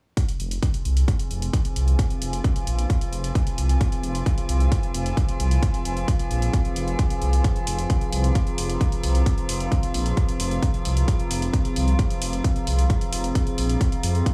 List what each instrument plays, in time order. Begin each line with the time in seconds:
0.17 synth drone F3 F4, ambient pad C4, kick, closed hi-hat
0.29 ambient pad G#4, closed hi-hat
0.40 detuned saw bass F1, ambient pad G#5, closed hi-hat
0.51 closed hi-hat
0.63 kick, closed hi-hat
0.74 closed hi-hat
0.85 detuned saw bass C2, closed hi-hat
0.97 closed hi-hat
1.08 kick, closed hi-hat
1.19 closed hi-hat
1.31 detuned saw bass F1, closed hi-hat
1.42 closed hi-hat
1.48 ambient pad F5
1.53 kick, closed hi-hat
1.65 closed hi-hat
1.76 detuned saw bass C2, closed hi-hat
1.88 closed hi-hat
1.99 kick, closed hi-hat
2.10 closed hi-hat
2.22 detuned saw bass F1, closed hi-hat
2.33 closed hi-hat
2.44 kick, closed hi-hat
2.56 closed hi-hat
2.67 detuned saw bass A#1, closed hi-hat
2.79 closed hi-hat
2.90 kick, closed hi-hat
3.01 closed hi-hat
3.13 detuned saw bass F1, closed hi-hat
3.24 closed hi-hat
3.35 kick, closed hi-hat
3.47 closed hi-hat
3.58 detuned saw bass C2, closed hi-hat
3.69 closed hi-hat
3.81 kick, closed hi-hat
3.92 closed hi-hat
4.03 detuned saw bass F1, closed hi-hat
4.15 closed hi-hat
4.26 kick, closed hi-hat
4.38 closed hi-hat
4.49 detuned saw bass C2, closed hi-hat
4.60 closed hi-hat
4.72 kick, closed hi-hat
4.83 closed hi-hat
4.94 detuned saw bass F1, closed hi-hat
5.06 closed hi-hat
5.17 kick, closed hi-hat
5.29 closed hi-hat
5.40 detuned saw bass C2, closed hi-hat
5.51 closed hi-hat
5.63 kick, closed hi-hat
5.74 closed hi-hat
5.85 detuned saw bass F1, closed hi-hat
5.97 closed hi-hat
6.08 kick, closed hi-hat
6.19 closed hi-hat
6.31 detuned saw bass A#1, closed hi-hat
6.42 closed hi-hat
6.53 kick, closed hi-hat
6.65 closed hi-hat
6.76 detuned saw bass F1, closed hi-hat
6.88 closed hi-hat
6.99 kick, closed hi-hat
7.10 closed hi-hat
7.22 detuned saw bass C2, closed hi-hat
7.33 closed hi-hat
7.44 kick, closed hi-hat
7.56 closed hi-hat
7.67 detuned saw bass F1, ambient pad A#5, open hi-hat
7.79 closed hi-hat
7.90 kick, closed hi-hat
8.01 closed hi-hat
8.13 detuned saw bass C2, open hi-hat
8.24 closed hi-hat
8.35 kick, closed hi-hat
8.47 closed hi-hat
8.58 detuned saw bass F1, open hi-hat
8.70 closed hi-hat
8.81 kick, closed hi-hat
8.92 closed hi-hat
9.04 detuned saw bass C2, open hi-hat
9.15 closed hi-hat
9.26 kick, closed hi-hat
9.38 closed hi-hat
9.49 detuned saw bass F1, open hi-hat
9.60 closed hi-hat
9.72 kick, closed hi-hat
9.83 closed hi-hat
9.94 detuned saw bass A#1, open hi-hat
10.06 closed hi-hat
10.17 kick, closed hi-hat
10.29 closed hi-hat
10.40 detuned saw bass F1, open hi-hat
10.51 closed hi-hat
10.63 kick, closed hi-hat
10.74 closed hi-hat
10.85 detuned saw bass C2, open hi-hat
10.97 closed hi-hat
11.08 kick, closed hi-hat
11.19 closed hi-hat
11.31 detuned saw bass F1, open hi-hat
11.42 closed hi-hat
11.54 kick, closed hi-hat
11.65 closed hi-hat
11.76 detuned saw bass C2, open hi-hat
11.88 closed hi-hat
11.99 kick, closed hi-hat
12.10 closed hi-hat
12.22 detuned saw bass F1, open hi-hat
12.33 closed hi-hat
12.44 kick, closed hi-hat
12.56 closed hi-hat
12.67 detuned saw bass C2, open hi-hat
12.79 closed hi-hat
12.90 kick, closed hi-hat
13.01 closed hi-hat
13.13 detuned saw bass F1, open hi-hat
13.24 closed hi-hat
13.35 kick, closed hi-hat
13.47 closed hi-hat
13.58 detuned saw bass A#1, open hi-hat
13.69 closed hi-hat
13.81 kick, closed hi-hat
13.92 closed hi-hat
14.03 detuned saw bass F2, open hi-hat
14.15 closed hi-hat
14.26 kick, closed hi-hat